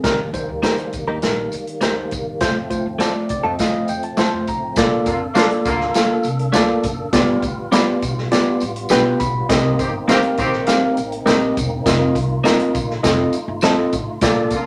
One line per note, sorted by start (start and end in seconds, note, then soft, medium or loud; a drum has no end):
0.00 0.19 G3 loud
0.00 0.18 C4 medium
0.00 0.18 G#4 medium
0.00 0.19 A#4 loud
0.00 closed hi-hat medium
0.04 0.37 D#2 loud
0.04 2.40 D#3 medium
0.04 2.40 G3 medium
0.04 2.40 A#3 medium
0.04 0.19 D#4 medium
0.04 kick loud
0.04 snare loud
0.04 tambourine medium
0.34 0.49 G3 medium
0.34 0.49 D#4 medium
0.34 0.49 C5 medium
0.34 kick medium
0.34 closed hi-hat medium
0.34 tambourine medium
0.48 0.70 D2 medium
0.63 0.94 G3 medium
0.63 0.75 A#3 medium
0.63 0.75 D#4 medium
0.63 0.94 D#4 medium
0.63 0.75 G4 medium
0.63 0.76 A#4 medium
0.63 0.94 C5 medium
0.63 snare loud
0.63 closed hi-hat medium
0.63 tambourine medium
0.78 closed hi-hat soft
0.93 1.04 D#2 medium
0.93 kick medium
0.93 closed hi-hat medium
0.93 tambourine soft
1.08 1.19 D#2 medium
1.08 1.18 A#3 medium
1.08 1.18 D#4 medium
1.08 1.17 G4 medium
1.08 1.17 A#4 medium
1.22 1.45 A#1 medium
1.22 1.53 G3 medium
1.22 1.53 D#4 medium
1.22 1.53 A#4 medium
1.22 snare medium
1.22 closed hi-hat medium
1.22 tambourine medium
1.52 1.84 D#3 medium
1.52 closed hi-hat medium
1.52 tambourine soft
1.67 closed hi-hat medium
1.81 2.04 D#2 medium
1.81 2.13 G3 medium
1.81 1.93 A#3 medium
1.81 1.94 D#4 medium
1.81 2.13 D#4 medium
1.81 1.94 G4 medium
1.81 1.94 A#4 medium
1.81 2.13 C5 medium
1.81 snare loud
1.81 closed hi-hat medium
1.81 tambourine medium
2.11 2.34 E2 medium
2.11 kick medium
2.11 closed hi-hat medium
2.11 tambourine medium
2.40 2.73 F2 loud
2.40 4.76 F3 medium
2.40 2.56 A3 loud
2.40 4.76 A3 medium
2.40 4.76 C4 medium
2.40 2.56 F4 loud
2.40 2.56 C5 loud
2.40 kick loud
2.40 snare loud
2.40 closed hi-hat medium
2.40 tambourine medium
2.70 2.86 A3 medium
2.70 2.86 F4 medium
2.70 2.86 C5 medium
2.70 kick medium
2.70 closed hi-hat medium
2.70 tambourine soft
2.86 3.07 D#2 medium
2.99 3.11 A3 medium
2.99 3.31 A3 medium
2.99 3.12 C4 medium
2.99 3.12 F4 medium
2.99 3.31 F4 medium
2.99 3.13 A4 medium
2.99 3.29 D5 medium
2.99 snare loud
2.99 closed hi-hat medium
2.99 tambourine medium
3.29 3.41 F2 medium
3.29 3.44 D5 medium
3.29 kick medium
3.29 closed hi-hat medium
3.29 tambourine medium
3.44 3.55 F2 medium
3.44 3.54 A3 soft
3.44 3.54 C4 soft
3.44 3.54 F4 medium
3.44 3.53 A4 medium
3.44 3.59 D#5 medium
3.59 3.91 F3 medium
3.59 3.90 A3 medium
3.59 3.91 F4 medium
3.59 3.91 D#5 medium
3.59 3.87 F5 medium
3.59 kick medium
3.59 snare medium
3.59 closed hi-hat medium
3.59 tambourine medium
3.88 4.11 F2 medium
3.88 4.03 G5 medium
3.88 closed hi-hat medium
3.88 tambourine medium
4.03 4.17 A5 medium
4.03 closed hi-hat medium
4.17 4.30 A3 medium
4.17 4.49 A3 medium
4.17 4.30 C4 medium
4.17 4.30 F4 medium
4.17 4.49 F4 medium
4.17 4.31 A4 medium
4.17 4.50 C5 medium
4.17 4.46 C6 medium
4.17 muted upright bass stroke soft
4.17 snare loud
4.17 closed hi-hat medium
4.17 tambourine medium
4.33 4.44 F2 medium
4.47 4.70 F3 medium
4.47 4.76 A#5 medium
4.47 kick medium
4.47 closed hi-hat medium
4.47 tambourine medium
4.76 4.99 A#1 loud
4.76 7.10 A#3 medium
4.76 5.09 A#3 medium
4.76 7.11 D4 medium
4.76 5.09 F4 medium
4.76 7.11 A4 medium
4.76 5.09 A4 medium
4.76 5.08 D5 loud
4.76 kick loud
4.76 snare loud
4.76 closed hi-hat loud
4.76 tambourine medium
5.06 5.28 F2 loud
5.06 5.19 D3 medium
5.06 5.19 A#3 medium
5.06 5.19 F4 medium
5.06 kick medium
5.06 closed hi-hat medium
5.06 tambourine medium
5.35 5.45 D3 medium
5.35 5.48 A3 medium
5.35 5.45 A#3 medium
5.35 5.67 A#3 medium
5.35 5.48 D4 medium
5.35 5.45 F4 loud
5.35 5.67 F4 medium
5.35 5.49 F4 medium
5.35 5.67 A4 medium
5.35 5.49 A4 loud
5.35 5.67 D5 loud
5.35 snare loud
5.35 closed hi-hat medium
5.35 tambourine medium
5.50 muted upright bass stroke soft
5.50 closed hi-hat soft
5.65 5.88 D2 medium
5.65 6.08 D3 medium
5.65 6.08 A#3 medium
5.65 6.08 F4 loud
5.65 kick medium
5.65 closed hi-hat medium
5.65 tambourine medium
5.80 snare soft
5.94 6.26 A#3 medium
5.94 6.26 F4 medium
5.94 6.26 A4 medium
5.94 6.26 F5 medium
5.94 snare loud
5.94 closed hi-hat medium
5.94 tambourine loud
6.09 muted upright bass stroke medium
6.23 6.47 C2 medium
6.23 closed hi-hat medium
6.23 tambourine medium
6.39 closed hi-hat medium
6.52 6.76 D2 medium
6.52 6.66 A3 medium
6.52 6.85 A#3 medium
6.52 6.66 D4 medium
6.52 6.66 F4 medium
6.52 6.85 F4 medium
6.52 6.66 A4 medium
6.52 6.85 A4 medium
6.52 6.85 D5 loud
6.52 snare loud
6.52 closed hi-hat loud
6.52 tambourine loud
6.83 7.05 F#1 medium
6.83 kick loud
6.83 closed hi-hat medium
6.83 tambourine medium
7.13 7.35 G1 loud
7.13 9.48 G3 medium
7.13 7.44 B3 medium
7.13 9.48 B3 medium
7.13 7.44 F4 medium
7.13 9.48 F4 medium
7.13 7.44 G4 medium
7.13 7.44 D5 loud
7.13 kick loud
7.13 snare loud
7.13 closed hi-hat loud
7.13 tambourine medium
7.42 7.64 D2 medium
7.42 kick medium
7.42 closed hi-hat medium
7.42 tambourine medium
7.72 7.84 G3 medium
7.72 8.03 B3 medium
7.72 7.84 D4 medium
7.72 8.03 F4 medium
7.72 7.85 F4 medium
7.72 8.03 G4 medium
7.72 7.85 B4 medium
7.72 8.03 D5 medium
7.72 snare loud
7.72 closed hi-hat medium
7.72 tambourine loud
7.87 muted upright bass stroke soft
8.02 8.24 B1 medium
8.02 kick medium
8.02 closed hi-hat medium
8.02 tambourine medium
8.18 snare soft
8.31 8.62 B3 medium
8.31 8.62 F4 medium
8.31 8.62 G4 medium
8.31 8.62 D5 medium
8.31 snare loud
8.31 closed hi-hat medium
8.31 tambourine loud
8.48 muted upright bass stroke medium
8.60 8.84 A1 medium
8.60 closed hi-hat medium
8.60 tambourine medium
8.76 closed hi-hat medium
8.89 9.13 B1 medium
8.89 9.02 G3 medium
8.89 9.21 B3 medium
8.89 9.03 D4 loud
8.89 9.21 F4 medium
8.89 9.03 F4 loud
8.89 9.21 G4 medium
8.89 9.21 B4 loud
8.89 9.03 B4 loud
8.89 9.18 G5 medium
8.89 snare loud
8.89 closed hi-hat medium
8.89 tambourine loud
9.20 9.42 B1 medium
9.20 9.48 B5 medium
9.20 kick loud
9.20 closed hi-hat medium
9.20 tambourine medium
9.49 9.71 C2 loud
9.49 13.01 A#3 medium
9.49 9.80 C4 medium
9.49 11.84 C4 medium
9.49 14.18 D#4 medium
9.49 9.80 G4 medium
9.49 9.80 A#4 medium
9.49 9.80 D#5 loud
9.49 kick loud
9.49 snare loud
9.49 closed hi-hat loud
9.49 tambourine medium
9.79 10.01 G1 medium
9.79 9.92 D#3 medium
9.79 9.92 C4 medium
9.79 9.92 G4 medium
9.79 kick medium
9.79 closed hi-hat medium
9.79 tambourine medium
10.08 10.19 D#3 medium
10.08 10.20 A#3 medium
10.08 10.39 C4 medium
10.08 10.19 C4 loud
10.08 10.21 D#4 medium
10.08 10.40 G4 medium
10.08 10.21 G4 medium
10.08 10.19 G4 loud
10.08 10.40 A#4 medium
10.08 10.21 A#4 medium
10.08 10.40 F5 medium
10.08 snare loud
10.08 closed hi-hat medium
10.08 tambourine loud
10.22 muted upright bass stroke soft
10.22 closed hi-hat medium
10.37 10.60 A#1 medium
10.37 10.81 D#3 loud
10.37 10.81 C4 medium
10.37 10.80 G4 loud
10.37 kick loud
10.37 closed hi-hat medium
10.37 tambourine medium
10.53 snare soft
10.67 10.98 C4 medium
10.67 10.98 G4 medium
10.67 10.98 A#4 medium
10.67 10.98 F5 loud
10.67 snare loud
10.67 closed hi-hat medium
10.67 tambourine loud
10.84 muted upright bass stroke soft
10.97 11.19 A1 medium
10.97 closed hi-hat medium
10.97 tambourine medium
11.12 closed hi-hat medium
11.26 11.49 A#1 medium
11.26 11.38 A#3 medium
11.26 11.57 C4 medium
11.26 11.39 D#4 medium
11.26 11.57 G4 medium
11.26 11.39 G4 loud
11.26 11.57 A#4 medium
11.26 11.39 A#4 loud
11.26 11.57 D#5 loud
11.26 snare loud
11.26 closed hi-hat loud
11.26 tambourine loud
11.57 11.79 E1 loud
11.57 kick medium
11.57 closed hi-hat medium
11.57 tambourine medium
11.86 12.08 F1 loud
11.86 12.17 C4 medium
11.86 14.20 F4 medium
11.86 12.16 F4 medium
11.86 12.16 A#4 medium
11.86 12.17 D#5 loud
11.86 kick loud
11.86 snare loud
11.86 closed hi-hat loud
11.86 tambourine medium
12.15 12.37 C2 medium
12.15 kick medium
12.15 closed hi-hat medium
12.15 tambourine medium
12.44 12.56 A#3 loud
12.44 12.76 C4 medium
12.44 12.57 D#4 medium
12.44 12.57 F4 loud
12.44 12.76 F4 medium
12.44 12.76 A#4 medium
12.44 12.57 A#4 loud
12.44 12.76 D#5 medium
12.44 snare loud
12.44 closed hi-hat medium
12.44 tambourine medium
12.59 muted upright bass stroke soft
12.59 closed hi-hat medium
12.75 12.96 A#1 medium
12.75 kick loud
12.75 closed hi-hat medium
12.75 tambourine medium
12.90 snare soft
13.03 13.25 F1 loud
13.03 14.21 A3 medium
13.03 13.34 C4 medium
13.03 13.34 F4 medium
13.03 13.34 A4 medium
13.03 13.34 D#5 loud
13.03 kick medium
13.03 snare loud
13.03 closed hi-hat medium
13.03 tambourine loud
13.33 muted upright bass stroke soft
13.33 closed hi-hat medium
13.33 tambourine medium
13.48 13.59 G1 medium
13.61 13.84 A1 medium
13.61 13.75 F3 medium
13.61 13.75 C4 medium
13.61 13.94 C4 medium
13.61 13.75 D#4 medium
13.61 13.94 F4 medium
13.61 13.94 A4 medium
13.61 13.75 A4 medium
13.61 13.94 D#5 loud
13.61 snare loud
13.61 closed hi-hat loud
13.61 tambourine loud
13.92 14.03 A1 medium
13.92 kick medium
13.92 closed hi-hat medium
13.92 tambourine medium
14.21 14.43 A#1 loud
14.21 14.53 A#3 medium
14.21 14.66 A#3 medium
14.21 14.66 D4 medium
14.21 14.53 F4 medium
14.21 14.66 A4 medium
14.21 14.53 A4 medium
14.21 14.53 D5 loud
14.21 kick loud
14.21 snare loud
14.21 closed hi-hat loud
14.21 tambourine medium
14.50 14.66 F2 medium
14.50 14.65 D3 medium
14.50 14.65 A#3 medium
14.50 14.65 F4 medium
14.50 kick medium
14.50 closed hi-hat medium
14.50 tambourine medium